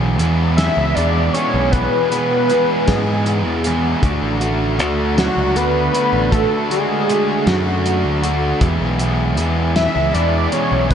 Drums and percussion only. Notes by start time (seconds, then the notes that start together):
0.19 closed hi-hat
0.58 snare, closed hi-hat
0.97 closed hi-hat
1.35 closed hi-hat
1.73 kick, closed hi-hat
2.12 closed hi-hat
2.50 closed hi-hat
2.88 kick, snare, closed hi-hat
3.26 closed hi-hat
3.64 closed hi-hat
4.03 kick, closed hi-hat
4.41 closed hi-hat
4.79 closed hi-hat
5.18 snare, closed hi-hat
5.56 closed hi-hat
5.95 closed hi-hat
6.32 kick, closed hi-hat
6.71 closed hi-hat
7.10 closed hi-hat
7.47 snare, closed hi-hat
7.86 closed hi-hat
8.24 closed hi-hat
8.61 kick, closed hi-hat
8.99 closed hi-hat
9.37 closed hi-hat
9.76 snare, closed hi-hat
10.15 closed hi-hat
10.52 closed hi-hat
10.91 kick, closed hi-hat